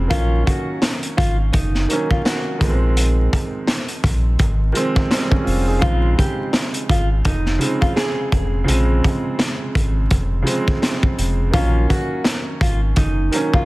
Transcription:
Already playing: C#3 F3 G#3 C4
0.08 A#1 D#3 F#3 A#3 F4, kick, closed hi-hat
0.12 C#4
0.47 F#4, kick, closed hi-hat
0.82 snare, closed hi-hat
1.03 closed hi-hat
1.17 G#1 F4, kick, closed hi-hat
1.52 F#1 D#4, kick, closed hi-hat
1.75 snare
1.88 D#3 F#3 A#3, closed hi-hat
1.93 C#4
2.11 F4, kick
2.25 F#4, snare, closed hi-hat
2.58 A#1 D#3 F3 G#3, kick, closed hi-hat
2.63 B3
2.69 C4
2.97 closed hi-hat
3.33 kick, closed hi-hat
3.67 snare, closed hi-hat
3.88 closed hi-hat
4.04 A#1, kick, closed hi-hat
4.39 G#1, kick, closed hi-hat
4.72 D#3 F3 G#3, closed hi-hat
4.77 C4
4.95 kick, snare
5.11 G3 C4, snare, closed hi-hat
5.31 G#3 C#4, kick
5.44 F1 C4 F4, open hi-hat
5.68 D#4 G#4
5.79 A#1 C#3 F3 G#3 F4, kick
5.83 C4
6.18 G4, kick, closed hi-hat
6.53 snare, closed hi-hat
6.74 closed hi-hat
6.89 G#1 F4, kick, closed hi-hat
7.25 F1 D#4, kick, closed hi-hat
7.46 snare
7.59 C#3 F3 G#3, closed hi-hat
7.63 C4
7.81 F4, kick, closed hi-hat
7.96 G#4, snare, closed hi-hat
8.32 F1, kick, closed hi-hat
8.64 C#3 F3 G#3
8.68 A#1 C4, closed hi-hat
9.04 kick, closed hi-hat
9.39 snare, closed hi-hat
9.75 G#1, kick, closed hi-hat
10.11 F1, kick, closed hi-hat
10.42 C#3 F3 G#3
10.47 C4, closed hi-hat
10.67 kick, snare
10.82 snare, closed hi-hat
11.03 kick
11.19 F1, closed hi-hat
11.51 A#1 D#3 F#3 A#3 F4, kick, closed hi-hat
11.55 C#4
11.90 F#4, kick, closed hi-hat
12.24 snare, closed hi-hat
12.61 G#1 F4, kick, closed hi-hat
12.96 F#1 D#4, kick, closed hi-hat
13.32 D#3 F#3 A#3, closed hi-hat
13.36 C#4
13.54 F4, kick

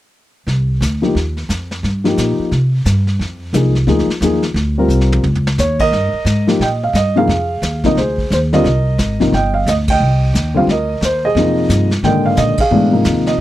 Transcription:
0.47 C2, brush sweep, snare
0.81 D2, snare, hi-hat pedal
1.02 F3 A#3 D#4 G4, snare
1.15 D#2, brush sweep, snare
1.37 snare
1.49 F2, snare, hi-hat pedal
1.71 snare
1.83 G2, brush sweep, snare
2.04 F3 A#3 D#4 G4, snare
2.17 A#2, snare, hi-hat pedal
2.39 muted upright bass stroke
2.51 C3, brush sweep, snare
2.85 G2, snare, hi-hat pedal
3.07 snare
3.19 F2, brush sweep, snare
3.53 C2 F3 A#3 D#4 G#4, snare, hi-hat pedal
3.75 snare
3.87 D2 F3 A#3 D#4 G#4, brush sweep, snare
3.99 snare
4.07 muted upright bass stroke, snare
4.21 D#2 F3 A#3 D#4 G#4, snare, hi-hat pedal
4.42 snare
4.54 D2, brush sweep, snare
4.78 G3 C4 F4 A#4
4.88 C2, hi-hat pedal
5.01 snare
5.12 high tom
5.24 C#2, floor tom
5.35 floor tom
5.47 snare
5.58 D#2 C#5, snare, hi-hat pedal
5.79 A#4 D#5, kick, crash
5.92 G2, brush sweep, snare
6.13 muted upright bass stroke
6.25 G#2, snare, hi-hat pedal
6.47 F3 A#3 D#4 G4, snare
6.59 A#2 G5, brush sweep, snare
6.64 D#5
6.83 F5
6.93 G2 D#5, snare, hi-hat pedal
7.16 C3 F3 A#3 D#4 G#4 F5
7.28 F2, brush sweep, snare
7.62 D#2, snare, hi-hat pedal
7.84 C3 F3 A#3 D#4 D#5, kick, snare
7.96 D2 G#4 C5, brush sweep, snare
8.18 kick
8.30 D#2 C5, snare, hi-hat pedal
8.53 D3 G3 C4 F4 A#4 D#5, snare
8.64 C2, brush sweep, snare
8.98 G#1, snare, hi-hat pedal
9.20 C3 F3 A#3 D#4, kick, snare
9.32 G1 D#5 G5, brush sweep, snare
9.54 F5
9.66 D2 D#5, snare, hi-hat pedal
9.88 D#5 G5, kick, ride
10.00 C2, brush sweep
10.33 D#2, snare, hi-hat pedal
10.54 D3 G3 C4 F4 F5
10.67 D2 D#5, brush sweep, snare
10.72 A#4
11.01 D#2, snare, hi-hat pedal
11.05 C5
11.25 G#4 D#5
11.35 F2 C3 F3 A#3 D#4, brush sweep, snare
11.69 G2, snare, hi-hat pedal
11.91 snare
12.03 G#2 A#2 D3 D#3 G#3 D#5 G5, brush sweep, snare
12.26 F5
12.37 A#2 D#5, snare, hi-hat pedal
12.58 G#4 F5, muted upright bass stroke, kick, ride
12.71 G#2 B2 E3 A3 D4, brush sweep
12.92 C3 F3 A#3 D#4
13.05 D#2, snare, hi-hat pedal
13.26 D#5, snare

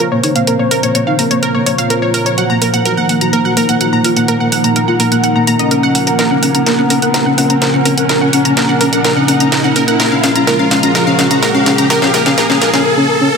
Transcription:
Already playing: A#2 C#3 F3 A#3 C4 C5 F5, riser
0.12 A#3 C#5
0.23 A#1 D#4 C#5, open hi-hat
0.28 A#5
0.36 A#3 F5, closed hi-hat
0.47 A#3 A#4, closed hi-hat
0.59 A#3 C#5
0.71 A#1 A#4, open hi-hat
0.83 A#3 C#5, closed hi-hat
0.95 A#3 C#5, closed hi-hat
1.07 D#4 F5
1.19 A#1 A#3 A#4, open hi-hat
1.31 A#3 C#5, closed hi-hat
1.43 A#4, closed hi-hat
1.55 A#3 C#5
1.66 A#1 A#3 C#5, open hi-hat
1.78 F4 F5, closed hi-hat
1.90 A#4, closed hi-hat
2.02 C#5
2.14 A#1 A#4, open hi-hat
2.26 C#5, closed hi-hat
2.38 D#3 D#4 F#4 F#5, closed hi-hat
2.50 A#3 A#5
2.62 D#1 A#3 A#4, open hi-hat
2.74 A#3 F#5, closed hi-hat
2.85 F#4 A#4, closed hi-hat
2.97 A#3 F#5
3.08 D#1 A#3 A#4 F#5, open hi-hat
3.21 F#4 F#5 A#5, closed hi-hat
3.33 A#3 A#4, closed hi-hat
3.45 F#4 F#5
3.57 A#1 A#3 A#4, open hi-hat
3.69 A#3 F#5, closed hi-hat
3.81 F#4 F#5, closed hi-hat
3.93 A#3 A#5
4.04 D#1 F4 A#4, open hi-hat
4.16 A#3 F#5, closed hi-hat
4.28 A#3 A#4, closed hi-hat
4.40 A#3 F#5
4.52 D#1 F#5, open hi-hat
4.64 A#3 A#5, closed hi-hat
4.76 A#3 A#4, closed hi-hat
4.88 F4 F#5
5.00 A#3 A#4, open hi-hat
5.12 A#3 F#5, closed hi-hat
5.24 F#5, closed hi-hat
5.36 A#3 A#5
5.47 A#3 A#5, open hi-hat
5.59 C#4 D#5, closed hi-hat
5.71 A#4, closed hi-hat
5.83 F#5
5.95 C#2 F#5, open hi-hat
6.07 A#4, closed hi-hat
6.19 C#3 C#4 A#4, snare, closed hi-hat
6.31 C#4 F#5
6.42 F#1 C#4 F#5, open hi-hat
6.54 C#4 A#5, closed hi-hat
6.66 A#4, snare, closed hi-hat
6.78 C#4 F#5
6.90 F#1 C#4 A#4, open hi-hat
7.02 A#4 F#5, closed hi-hat, mid tom
7.14 A#4, snare, closed hi-hat
7.26 C#4 F#5
7.38 C#2 C#4 F#5, open hi-hat
7.50 C#4 A#5, closed hi-hat
7.62 A#4, snare, closed hi-hat
7.74 C#4 F#5
7.85 F#1 C#4 A#4, open hi-hat
7.97 A#4 F#5, closed hi-hat
8.09 A#4, snare, closed hi-hat
8.21 C#4 F#5
8.33 F#1 C#4 F#5, open hi-hat
8.45 C#4 A#5, closed hi-hat
8.57 A#4, snare, closed hi-hat
8.69 C#4 F#5
8.81 F#1 C#4 A#4, open hi-hat
8.93 A#4 F#5, closed hi-hat, mid tom
9.04 A#4, snare, closed hi-hat
9.16 C#4 F#5
9.28 F#1 C#4 F#5, open hi-hat
9.40 C#4 A#5, closed hi-hat
9.52 A#4, snare, closed hi-hat
9.64 C#4 F#5
9.76 F#1 C#4 A#4, open hi-hat
9.88 A#4 F#5, closed hi-hat
10.00 F3 G#3 A#4, snare, closed hi-hat
10.12 C#4 F5
10.18 G#4
10.23 C#2 C#4 F5, snare, open hi-hat
10.35 C#4 A#5, closed hi-hat
10.47 A#4, snare, closed hi-hat
10.59 C#4 F5
10.71 C#2 C#4 F5, snare, open hi-hat
10.83 C#4 A#5, closed hi-hat, mid tom
10.95 A#4, snare, closed hi-hat
11.07 C#4 F5
11.19 G#1 C#4 F5, snare, open hi-hat
11.31 C#4 A#5, closed hi-hat
11.42 A#4, snare, closed hi-hat
11.49 F5
11.54 C#4 F5
11.66 C#2 C#4 F5, snare, open hi-hat
11.78 C#4 A#5, closed hi-hat
11.90 A#3 A#4, snare, closed hi-hat
12.02 C#4 F5, snare
12.14 C#2 A#4, snare, open hi-hat
12.26 C#4 F5, snare, closed hi-hat
12.38 A#4, snare, closed hi-hat
12.50 C#4 F5, snare
12.61 C#2 A#4, snare, mid tom, open hi-hat
12.74 C#4 F5, snare, closed hi-hat, mid tom
12.85 A#4
12.97 C#4
13.09 A#4
13.21 C#4
13.33 A#4

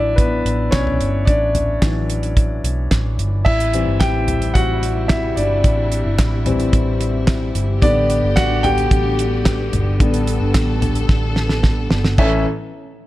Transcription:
Already playing: A1 E3 F#3 D4 E4 D5 E5
0.16 B3 B4, kick, closed hi-hat
0.45 A1, closed hi-hat
0.71 B1 C#4 C#5, kick, snare, clap, closed hi-hat
0.87 floor tom
1.00 G1, closed hi-hat
1.25 A1 D4 D5, kick, closed hi-hat
1.55 closed hi-hat, floor tom
1.81 A1 E3 F#3 D4, kick, snare, clap, closed hi-hat
2.10 closed hi-hat
2.23 closed hi-hat
2.37 kick, closed hi-hat
2.64 B1, closed hi-hat
2.91 A1, kick, snare, clap, closed hi-hat
3.18 G1, closed hi-hat
3.45 A1 C3 G3 E4 E5, kick, crash
3.60 closed hi-hat
3.73 E3 G3 C4, closed hi-hat
3.87 G1
4.00 G4 G5, kick, snare, clap, closed hi-hat
4.28 closed hi-hat, floor tom
4.42 closed hi-hat
4.54 A1 F#4 F#5, kick, closed hi-hat
4.83 closed hi-hat
5.08 E4 E5, kick, snare, clap, closed hi-hat
5.36 G1 D4 D5, closed hi-hat
5.64 A1, kick, closed hi-hat
5.92 closed hi-hat
6.05 G1
6.19 A1, kick, snare, clap, closed hi-hat
6.45 E3 G3 C4, closed hi-hat, floor tom
6.60 closed hi-hat
6.73 A1, kick, closed hi-hat
7.01 closed hi-hat
7.27 kick, snare, clap, closed hi-hat
7.55 G1, closed hi-hat
7.82 A1 D3 G3 B3 D4 G4 D5, kick, closed hi-hat
8.10 closed hi-hat
8.23 G1
8.36 A1 F#4 F#5, kick, snare, clap, closed hi-hat
8.63 D3 G3 B3 G4 G5, closed hi-hat, floor tom
8.78 closed hi-hat
8.91 A1, kick, closed hi-hat
9.19 closed hi-hat
9.46 kick, snare, clap, closed hi-hat
9.73 G1, closed hi-hat, floor tom
10.00 A1 D3 G3 B3 A4, kick, closed hi-hat
10.14 closed hi-hat
10.27 closed hi-hat
10.41 G1
10.55 A1, kick, snare, clap, closed hi-hat
10.82 closed hi-hat, floor tom
10.95 closed hi-hat
11.09 A1, kick, snare
11.36 snare
11.49 snare
11.63 kick, snare
11.91 G1, snare
12.04 snare
12.18 A1 E3 C#4 E4 A4 E5, kick, crash

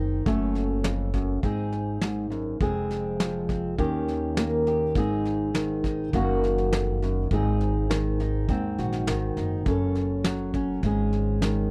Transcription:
Already playing: F#1 D#3 C4 D#4 G#4
0.26 F#1 F#2 A3 C#4 A4, kick, snare
0.55 snare
0.84 F2, snare
1.14 F#2, kick, snare
1.43 G#1 G#2 C4 D#4 G#4, kick, snare
1.72 snare
2.01 G#2, snare
2.30 F#2, snare
2.60 F1 F2 G#3 C4 G#4, kick, snare
2.91 snare
3.20 F3, snare
3.49 C4, kick, snare
3.78 D#2 D#3 C#4 G4, kick, snare
4.08 snare
4.37 A#3, snare
4.67 G4, snare
4.95 G#1 G#2 C4 D#4 G#4, kick, snare
5.25 snare
5.54 D#3, snare
5.84 D#4, kick, snare
6.13 F#1 F#2 A#3 D#4 F#4, kick, snare
6.44 snare
6.58 snare
6.73 F2, snare
7.02 F#2, snare
7.31 G#1 G#2 C4 D#4 G#4, kick, snare
7.61 snare
7.90 D#3, snare
8.20 D#4, snare
8.49 D#2 G#2 C4, kick, snare
8.78 A#1 F#4, snare
8.92 snare
9.07 G#1 D#3, snare
9.37 F#1 D#4, snare
9.66 F#1 F#2 C#4 A4, kick, snare
9.95 snare
10.24 F#3, snare
10.54 C#4, kick, snare
10.83 G#1 G#2 G#3 C#4 G#4, kick, snare
11.13 snare
11.42 D#3, snare

